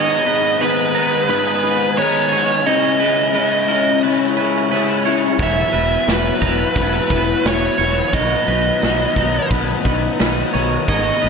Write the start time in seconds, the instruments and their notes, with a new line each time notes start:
Already playing: overdriven electric guitar G#2 D#3 G#3 B3 D#4, ambient pad B3 D#5 G#5 D#6, clean electric guitar G#4 C#5, lead electric guitar D#5
0.26 overdriven electric guitar G#3 B3 D#4, clean electric guitar G#4 B4
0.61 overdriven electric guitar D#3 G#3 B3 D#4, clean electric guitar G#4 B4, lead electric guitar B4
0.94 overdriven electric guitar G#3 B3 D#4, clean electric guitar A#5
1.28 overdriven electric guitar G#2 D#3 G#3 B3 D#4, clean electric guitar B4, lead electric guitar B4
1.63 overdriven electric guitar G#3 B3 D#4, clean electric guitar G#4 B4
1.98 overdriven electric guitar D#3 G#3 B3 D#4, clean electric guitar G#4 B4, lead electric guitar C#5
2.32 overdriven electric guitar G#3 B3 D#4, clean electric guitar G#4 C#5
2.66 overdriven electric guitar C#3 G#3 C#4 E4, ambient pad E4 C#5, clean electric guitar G#4 C#5, lead electric guitar D#5
2.99 overdriven electric guitar G#3 C#4 E4, clean electric guitar G#4 B4
3.33 overdriven electric guitar C#3 G#3 C#4 E4, clean electric guitar B4
3.38 clean electric guitar G#4
3.68 overdriven electric guitar G#3 C#4 E4, clean electric guitar A#4
4.03 overdriven electric guitar C#3 G#3 C#4 E4, clean electric guitar B4
4.37 overdriven electric guitar G#3 C#4 E4, clean electric guitar G#4 B4
4.71 overdriven electric guitar C#3 G#3 C#4 E4, clean electric guitar G#4 B4
5.05 overdriven electric guitar G#3 C#4 E4, clean electric guitar G#4 C#5
5.38 fingered electric bass E1, clean electric guitar E2 B4 C#5, overdriven electric guitar E3 F#3 B3, ambient pad B4 F#5, kick, open hi-hat
5.42 overdriven electric guitar E4, lead electric guitar E5
5.73 fingered electric bass E1, overdriven electric guitar F#3 B3 E4, clean electric guitar B4, open hi-hat
6.07 fingered electric bass E1, overdriven electric guitar E3 F#3 B3 E4, clean electric guitar B4, lead electric guitar B4, snare, open hi-hat
6.41 fingered electric bass E1, overdriven electric guitar B3 E4, clean electric guitar A#5, kick, open hi-hat
6.46 overdriven electric guitar F#3
6.75 fingered electric bass E1, overdriven electric guitar E3 F#3, clean electric guitar B4, lead electric guitar B4, kick, open hi-hat
6.80 overdriven electric guitar B3 E4
7.09 fingered electric bass E1, overdriven electric guitar E4, clean electric guitar B4, kick, open hi-hat
7.14 overdriven electric guitar F#3 B3
7.44 fingered electric bass E1, overdriven electric guitar E3 F#3, clean electric guitar B4, lead electric guitar C#5, snare, open hi-hat
7.48 overdriven electric guitar B3 E4, clean electric guitar B4
7.78 fingered electric bass E1, overdriven electric guitar B3 E4, clean electric guitar B4 C#5, open hi-hat
7.83 overdriven electric guitar F#3
8.13 fingered electric bass B1, overdriven electric guitar B2 D#3 F#3 B3 D#4, clean electric guitar B4 C#5, lead electric guitar D#5, ambient pad D#5 D#6, kick, open hi-hat
8.47 fingered electric bass B1, overdriven electric guitar B3 D#4, clean electric guitar B4, open hi-hat
8.51 overdriven electric guitar F#3
8.82 fingered electric bass B1, overdriven electric guitar D#3 F#3 B3 D#4, clean electric guitar B4, snare, open hi-hat
9.16 fingered electric bass B1, overdriven electric guitar B3 D#4, clean electric guitar A#5, kick, open hi-hat
9.21 overdriven electric guitar F#3
9.51 fingered electric bass B1, overdriven electric guitar B2 D#3 F#3 B3 D#4, clean electric guitar B4, kick, open hi-hat
9.85 fingered electric bass B1, overdriven electric guitar B3 D#4, clean electric guitar B4, kick, open hi-hat
9.90 overdriven electric guitar F#3
10.19 fingered electric bass B1, overdriven electric guitar D#3 F#3 B3 D#4, clean electric guitar B4, snare, open hi-hat
10.53 fingered electric bass B1, overdriven electric guitar F#3 B3 D#4, clean electric guitar B4 C#5, open hi-hat
10.87 fingered electric bass G#1, overdriven electric guitar G#2 D#3 G#3 B3 D#4, ambient pad B4 G#5, clean electric guitar B4 C#5, lead electric guitar D#5, kick, open hi-hat
11.21 fingered electric bass G#1, overdriven electric guitar G#3 B3 D#4, clean electric guitar B4, open hi-hat